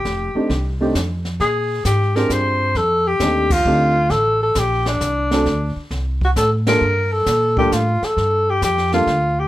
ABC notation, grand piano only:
X:1
M:3/4
L:1/8
Q:"Swing" 1/4=133
K:Fmix
V:1 name="Grand piano"
z [A,CDEG] z [A,CDEG] z2 | z3 [CDFG_A]3 | z2 [A,CDEG] z [A,CDEG] z | z4 z [A,CD_GA] |
z4 z [G,B,DFA] | z3 [G,B,DFA] z2 | z3 [G,B,DFA] z2 |]